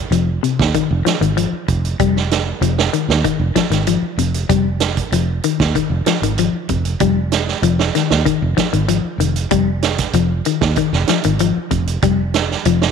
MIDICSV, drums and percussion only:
0, 0, Header, 1, 2, 480
1, 0, Start_track
1, 0, Key_signature, -4, "minor"
1, 0, Tempo, 626959
1, 1530, Time_signature, 4, 2, 24, 8
1, 9888, End_track
2, 0, Start_track
2, 0, Title_t, "Drums"
2, 92, Note_on_c, 9, 42, 59
2, 169, Note_off_c, 9, 42, 0
2, 335, Note_on_c, 9, 42, 45
2, 412, Note_off_c, 9, 42, 0
2, 455, Note_on_c, 9, 36, 58
2, 461, Note_on_c, 9, 38, 61
2, 532, Note_off_c, 9, 36, 0
2, 538, Note_off_c, 9, 38, 0
2, 568, Note_on_c, 9, 42, 55
2, 570, Note_on_c, 9, 36, 62
2, 645, Note_off_c, 9, 42, 0
2, 647, Note_off_c, 9, 36, 0
2, 813, Note_on_c, 9, 42, 43
2, 815, Note_on_c, 9, 38, 64
2, 890, Note_off_c, 9, 42, 0
2, 891, Note_off_c, 9, 38, 0
2, 936, Note_on_c, 9, 42, 48
2, 1012, Note_off_c, 9, 42, 0
2, 1051, Note_on_c, 9, 42, 60
2, 1128, Note_off_c, 9, 42, 0
2, 1288, Note_on_c, 9, 42, 42
2, 1289, Note_on_c, 9, 36, 55
2, 1364, Note_off_c, 9, 42, 0
2, 1366, Note_off_c, 9, 36, 0
2, 1414, Note_on_c, 9, 42, 41
2, 1490, Note_off_c, 9, 42, 0
2, 1528, Note_on_c, 9, 42, 61
2, 1529, Note_on_c, 9, 36, 81
2, 1604, Note_off_c, 9, 42, 0
2, 1606, Note_off_c, 9, 36, 0
2, 1656, Note_on_c, 9, 38, 26
2, 1733, Note_off_c, 9, 38, 0
2, 1771, Note_on_c, 9, 42, 47
2, 1773, Note_on_c, 9, 38, 65
2, 1848, Note_off_c, 9, 42, 0
2, 1849, Note_off_c, 9, 38, 0
2, 2007, Note_on_c, 9, 42, 61
2, 2084, Note_off_c, 9, 42, 0
2, 2132, Note_on_c, 9, 38, 63
2, 2208, Note_off_c, 9, 38, 0
2, 2246, Note_on_c, 9, 42, 47
2, 2322, Note_off_c, 9, 42, 0
2, 2372, Note_on_c, 9, 38, 61
2, 2449, Note_off_c, 9, 38, 0
2, 2485, Note_on_c, 9, 42, 61
2, 2486, Note_on_c, 9, 36, 66
2, 2561, Note_off_c, 9, 42, 0
2, 2562, Note_off_c, 9, 36, 0
2, 2723, Note_on_c, 9, 42, 51
2, 2725, Note_on_c, 9, 36, 59
2, 2725, Note_on_c, 9, 38, 69
2, 2800, Note_off_c, 9, 42, 0
2, 2801, Note_off_c, 9, 36, 0
2, 2801, Note_off_c, 9, 38, 0
2, 2844, Note_on_c, 9, 42, 53
2, 2846, Note_on_c, 9, 38, 27
2, 2921, Note_off_c, 9, 42, 0
2, 2922, Note_off_c, 9, 38, 0
2, 2960, Note_on_c, 9, 42, 66
2, 3037, Note_off_c, 9, 42, 0
2, 3204, Note_on_c, 9, 42, 51
2, 3281, Note_off_c, 9, 42, 0
2, 3324, Note_on_c, 9, 42, 52
2, 3401, Note_off_c, 9, 42, 0
2, 3442, Note_on_c, 9, 36, 80
2, 3442, Note_on_c, 9, 42, 69
2, 3518, Note_off_c, 9, 42, 0
2, 3519, Note_off_c, 9, 36, 0
2, 3676, Note_on_c, 9, 42, 47
2, 3677, Note_on_c, 9, 38, 65
2, 3752, Note_off_c, 9, 42, 0
2, 3754, Note_off_c, 9, 38, 0
2, 3804, Note_on_c, 9, 42, 50
2, 3806, Note_on_c, 9, 36, 60
2, 3881, Note_off_c, 9, 42, 0
2, 3883, Note_off_c, 9, 36, 0
2, 3922, Note_on_c, 9, 42, 61
2, 3999, Note_off_c, 9, 42, 0
2, 4160, Note_on_c, 9, 42, 50
2, 4237, Note_off_c, 9, 42, 0
2, 4287, Note_on_c, 9, 36, 60
2, 4289, Note_on_c, 9, 38, 63
2, 4363, Note_off_c, 9, 36, 0
2, 4366, Note_off_c, 9, 38, 0
2, 4403, Note_on_c, 9, 36, 59
2, 4404, Note_on_c, 9, 42, 59
2, 4480, Note_off_c, 9, 36, 0
2, 4481, Note_off_c, 9, 42, 0
2, 4640, Note_on_c, 9, 42, 47
2, 4641, Note_on_c, 9, 38, 67
2, 4716, Note_off_c, 9, 42, 0
2, 4718, Note_off_c, 9, 38, 0
2, 4770, Note_on_c, 9, 42, 48
2, 4847, Note_off_c, 9, 42, 0
2, 4881, Note_on_c, 9, 42, 60
2, 4958, Note_off_c, 9, 42, 0
2, 5119, Note_on_c, 9, 42, 45
2, 5123, Note_on_c, 9, 36, 54
2, 5196, Note_off_c, 9, 42, 0
2, 5200, Note_off_c, 9, 36, 0
2, 5244, Note_on_c, 9, 42, 42
2, 5320, Note_off_c, 9, 42, 0
2, 5359, Note_on_c, 9, 42, 60
2, 5362, Note_on_c, 9, 36, 88
2, 5435, Note_off_c, 9, 42, 0
2, 5439, Note_off_c, 9, 36, 0
2, 5602, Note_on_c, 9, 42, 47
2, 5603, Note_on_c, 9, 38, 61
2, 5678, Note_off_c, 9, 42, 0
2, 5680, Note_off_c, 9, 38, 0
2, 5727, Note_on_c, 9, 38, 26
2, 5803, Note_off_c, 9, 38, 0
2, 5841, Note_on_c, 9, 42, 60
2, 5917, Note_off_c, 9, 42, 0
2, 5966, Note_on_c, 9, 38, 59
2, 6043, Note_off_c, 9, 38, 0
2, 6085, Note_on_c, 9, 42, 47
2, 6087, Note_on_c, 9, 38, 26
2, 6162, Note_off_c, 9, 42, 0
2, 6164, Note_off_c, 9, 38, 0
2, 6204, Note_on_c, 9, 38, 61
2, 6281, Note_off_c, 9, 38, 0
2, 6325, Note_on_c, 9, 36, 61
2, 6325, Note_on_c, 9, 42, 62
2, 6402, Note_off_c, 9, 36, 0
2, 6402, Note_off_c, 9, 42, 0
2, 6565, Note_on_c, 9, 42, 52
2, 6566, Note_on_c, 9, 36, 62
2, 6567, Note_on_c, 9, 38, 64
2, 6642, Note_off_c, 9, 42, 0
2, 6643, Note_off_c, 9, 36, 0
2, 6643, Note_off_c, 9, 38, 0
2, 6686, Note_on_c, 9, 42, 54
2, 6763, Note_off_c, 9, 42, 0
2, 6802, Note_on_c, 9, 42, 69
2, 6878, Note_off_c, 9, 42, 0
2, 7045, Note_on_c, 9, 42, 52
2, 7121, Note_off_c, 9, 42, 0
2, 7164, Note_on_c, 9, 42, 51
2, 7241, Note_off_c, 9, 42, 0
2, 7279, Note_on_c, 9, 42, 67
2, 7285, Note_on_c, 9, 36, 86
2, 7355, Note_off_c, 9, 42, 0
2, 7361, Note_off_c, 9, 36, 0
2, 7522, Note_on_c, 9, 42, 49
2, 7523, Note_on_c, 9, 38, 63
2, 7598, Note_off_c, 9, 42, 0
2, 7600, Note_off_c, 9, 38, 0
2, 7643, Note_on_c, 9, 42, 51
2, 7644, Note_on_c, 9, 38, 25
2, 7648, Note_on_c, 9, 36, 63
2, 7719, Note_off_c, 9, 42, 0
2, 7721, Note_off_c, 9, 38, 0
2, 7725, Note_off_c, 9, 36, 0
2, 7758, Note_on_c, 9, 42, 67
2, 7834, Note_off_c, 9, 42, 0
2, 8000, Note_on_c, 9, 42, 55
2, 8077, Note_off_c, 9, 42, 0
2, 8124, Note_on_c, 9, 38, 65
2, 8128, Note_on_c, 9, 36, 60
2, 8201, Note_off_c, 9, 38, 0
2, 8205, Note_off_c, 9, 36, 0
2, 8236, Note_on_c, 9, 42, 59
2, 8243, Note_on_c, 9, 36, 62
2, 8313, Note_off_c, 9, 42, 0
2, 8320, Note_off_c, 9, 36, 0
2, 8366, Note_on_c, 9, 38, 28
2, 8442, Note_off_c, 9, 38, 0
2, 8479, Note_on_c, 9, 42, 50
2, 8480, Note_on_c, 9, 38, 68
2, 8555, Note_off_c, 9, 42, 0
2, 8557, Note_off_c, 9, 38, 0
2, 8601, Note_on_c, 9, 42, 52
2, 8678, Note_off_c, 9, 42, 0
2, 8721, Note_on_c, 9, 42, 62
2, 8797, Note_off_c, 9, 42, 0
2, 8963, Note_on_c, 9, 42, 44
2, 8967, Note_on_c, 9, 36, 59
2, 9040, Note_off_c, 9, 42, 0
2, 9044, Note_off_c, 9, 36, 0
2, 9091, Note_on_c, 9, 42, 46
2, 9167, Note_off_c, 9, 42, 0
2, 9205, Note_on_c, 9, 42, 65
2, 9208, Note_on_c, 9, 36, 85
2, 9282, Note_off_c, 9, 42, 0
2, 9285, Note_off_c, 9, 36, 0
2, 9447, Note_on_c, 9, 42, 45
2, 9449, Note_on_c, 9, 38, 68
2, 9524, Note_off_c, 9, 42, 0
2, 9525, Note_off_c, 9, 38, 0
2, 9579, Note_on_c, 9, 38, 25
2, 9655, Note_off_c, 9, 38, 0
2, 9686, Note_on_c, 9, 42, 63
2, 9763, Note_off_c, 9, 42, 0
2, 9812, Note_on_c, 9, 38, 64
2, 9888, Note_off_c, 9, 38, 0
2, 9888, End_track
0, 0, End_of_file